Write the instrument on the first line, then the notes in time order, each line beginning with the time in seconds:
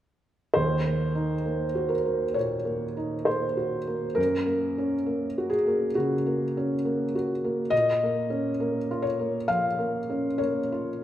felt piano
0.54 D#2 C5
0.85 A#3
1.15 D#4
1.46 A#3
1.75 F#4
1.89 A#4
2.05 A#3
2.34 A#2 C#5
2.65 A#3
2.97 D#4
3.25 A#3 C5
3.57 F#4
3.87 A#3
4.15 F#2 A#4
4.46 A#3
4.78 C#4
5.06 A#3
5.38 F#4
5.50 G#4
5.67 A#3
5.95 C#3 F#4
6.26 A#3
6.57 C#4
6.85 A#3
7.15 F#4
7.44 A#3
7.70 A#2 D#5
8.03 A#3
8.30 C#4
8.60 A#3
8.91 F4
9.02 C#5
9.19 A#3
9.48 F3 F5
9.79 A#3
10.10 C#4
10.38 A#3 C#5
10.72 F4